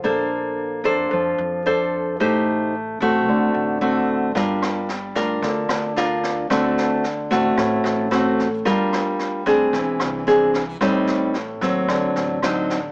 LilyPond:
<<
  \new Staff \with { instrumentName = "Nylon-string guitar" } { \time 4/4 \key g \minor \tempo 4 = 111 << { <d' a' c''>4. <d' a' c''>4. <d' a' c''>4 | <ees' g' c''>4 r8 <a c' fis'>4. <a c' fis'>4 | <d' f' bes'>4 r8 <d' f' bes'>4. <d' f' bes'>4 | <a c' fis'>4 r8 <a c' fis'>4. <a c' fis'>8 r8 |
<d' f' bes'>4. <c' d' aes'>4. <bis d' gis'>8 r8 | <g c' ees'>4 r8 <fis c'>4. <fis c' ees'>8 r8 | } \\ { bes2 f2 | a2 d2 | g2 d2 | d2 a,2 |
g2 e2 | a,2 d2 | } >> }
  \new Staff \with { instrumentName = "Upright bass" } { \clef bass \time 4/4 \key g \minor bes,,4. f,8 f,8 f,4. | a,,4. a,,8 d,8 a,,4. | g,,4. d,8 d,8 d,4. | d,4. a,,8 a,,8 a,,4. |
g,,4. d,8 e,,8 bis,,4. | a,,4. ees,8 d,8 a,,4. | }
  \new DrumStaff \with { instrumentName = "Drums" } \drummode { \time 4/4 r4 r4 r4 r4 | r4 r4 r4 r4 | <bd sn>8 <ss sn>8 sn8 <bd sn>8 <bd sn>8 <ss sn>8 sn8 <bd sn>8 | <bd ss sn>8 sn8 sn8 <bd sn>8 <bd ss sn>8 sn8 <ss sn>8 <bd sn>8 |
<bd sn>8 <ss sn>8 sn8 <bd sn>8 <bd sn>8 <ss sn>8 sn8 <bd sn>8 | <bd ss sn>8 sn8 sn8 <bd sn>8 <bd ss sn>8 sn8 <ss sn>8 <bd sn>8 | }
>>